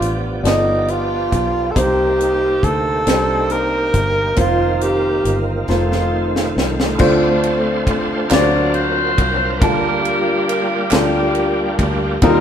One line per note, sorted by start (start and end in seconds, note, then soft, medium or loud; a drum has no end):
0.00 0.41 A1 medium
0.00 0.40 G2 soft
0.00 1.72 F3 soft
0.00 0.20 B3 medium
0.00 1.72 B3 soft
0.00 0.20 D4 medium
0.00 0.19 F4 medium
0.00 0.21 F4 medium
0.00 0.21 G4 medium
0.00 1.74 G4 medium
0.00 0.21 D5 medium
0.00 1.72 D5 medium
0.00 closed hi-hat soft
0.43 1.28 G1 medium
0.43 1.52 B3 medium
0.43 0.92 D#4 medium
0.43 1.52 F4 soft
0.43 1.52 G4 soft
0.43 1.53 A4 medium
0.43 1.52 D5 soft
0.43 snare medium
0.43 closed hi-hat medium
0.88 1.72 F4 medium
0.88 closed hi-hat soft
1.32 1.73 B1 medium
1.32 kick medium
1.32 closed hi-hat soft
1.71 2.83 A#3 medium
1.71 4.34 C4 soft
1.71 2.83 C4 medium
1.71 4.33 D#4 medium
1.71 4.34 G4 medium
1.71 1.80 A4 medium
1.75 2.60 C2 medium
1.75 3.03 C3 soft
1.75 4.34 A#3 soft
1.75 2.84 D#4 medium
1.75 2.84 G4 medium
1.75 2.65 G4 medium
1.75 2.84 C5 medium
1.75 kick medium
1.75 closed hi-hat medium
2.20 closed hi-hat soft
2.63 3.04 D2 medium
2.63 3.53 A4 medium
2.63 kick medium
2.63 closed hi-hat soft
3.06 3.90 C2 medium
3.06 4.14 A#3 medium
3.06 4.15 C4 soft
3.06 3.13 D4 soft
3.06 4.15 G4 soft
3.06 4.15 C5 medium
3.06 snare medium
3.06 closed hi-hat medium
3.13 4.18 D#4 soft
3.50 4.39 A#4 medium
3.50 closed hi-hat soft
3.94 4.34 G1 medium
3.94 kick medium
3.94 closed hi-hat soft
4.35 5.21 F1 medium
4.35 5.67 D#3 medium
4.35 5.45 A#3 medium
4.35 5.69 A#3 soft
4.35 5.45 C4 medium
4.35 5.67 C4 soft
4.35 5.45 D#4 medium
4.35 5.45 F4 medium
4.35 5.67 F4 medium
4.35 5.45 C5 medium
4.35 kick loud
4.35 closed hi-hat medium
4.40 4.84 F4 medium
4.81 5.42 G4 medium
4.81 closed hi-hat soft
5.25 5.65 G1 medium
5.25 closed hi-hat soft
5.68 6.52 F1 medium
5.68 7.00 D#3 medium
5.68 6.76 A3 medium
5.68 6.99 A3 soft
5.68 6.98 C4 soft
5.68 6.77 C4 soft
5.68 6.77 D#4 soft
5.68 6.99 F4 medium
5.68 6.77 F4 medium
5.68 6.64 F4 medium
5.68 6.77 C5 medium
5.68 snare soft
5.92 snare soft
6.36 snare medium
6.57 6.97 C2 medium
6.57 snare medium
6.80 snare medium
6.98 8.27 D2 loud
6.98 8.26 D3 medium
6.98 8.07 A3 medium
6.98 8.31 A3 medium
6.98 8.07 C4 medium
6.98 8.28 C4 medium
6.98 8.07 D4 medium
6.98 8.29 D4 medium
6.98 8.07 F4 medium
6.98 8.31 F4 medium
6.98 8.07 C5 medium
6.98 8.31 C5 medium
6.98 kick loud
6.98 crash medium
7.43 ride bell soft
7.87 kick medium
7.87 ride bell medium
8.29 9.14 D2 loud
8.29 9.58 D3 medium
8.29 9.61 F#3 medium
8.29 9.39 F#3 medium
8.29 9.38 A#3 medium
8.29 9.61 C4 medium
8.29 9.59 D4 medium
8.29 9.38 D4 medium
8.29 9.61 A#4 medium
8.29 8.38 B4 medium
8.29 9.61 F5 medium
8.29 9.38 F5 medium
8.29 snare medium
8.29 clap medium
8.29 ride bell medium
8.33 8.75 F4 medium
8.33 8.74 F#4 medium
8.33 8.73 D5 loud
8.38 9.42 C5 medium
8.74 9.58 F4 medium
8.74 9.58 F#4 medium
8.74 9.58 C5 loud
8.74 ride bell soft
9.18 9.62 C2 medium
9.18 kick medium
9.18 ride bell medium
9.60 10.88 D2 loud
9.60 10.89 D3 medium
9.60 12.18 G3 medium
9.60 10.69 G3 medium
9.60 9.68 A3 medium
9.60 12.18 A#3 medium
9.60 12.18 D4 medium
9.60 10.69 D4 medium
9.60 12.18 F4 medium
9.60 10.89 F4 medium
9.60 10.70 F4 medium
9.60 12.18 G4 medium
9.60 10.89 G4 medium
9.60 10.46 A#4 loud
9.60 10.70 A5 medium
9.60 kick loud
9.60 ride bell medium
9.68 10.72 A#3 medium
10.05 ride bell soft
10.48 10.89 A#4 medium
10.48 ride bell medium
10.90 11.75 D2 medium
10.90 11.99 G3 medium
10.90 11.99 A#3 medium
10.90 12.19 A#3 medium
10.90 11.99 D4 medium
10.90 12.00 F4 medium
10.90 11.89 G4 medium
10.90 11.99 A4 medium
10.90 snare medium
10.90 clap loud
10.90 ride bell medium
11.35 ride bell soft
11.79 12.19 D2 medium
11.79 kick medium
11.79 ride bell medium
12.22 12.40 D#2 loud
12.22 12.40 D#3 medium
12.22 12.29 F#3 medium
12.22 12.40 G3 medium
12.22 12.40 C4 medium
12.22 12.40 D#4 medium
12.22 12.40 F4 medium
12.22 12.30 A4 medium
12.22 12.40 A#4 loud
12.22 kick loud
12.22 ride bell medium
12.28 12.40 G3 medium
12.28 12.40 A#4 medium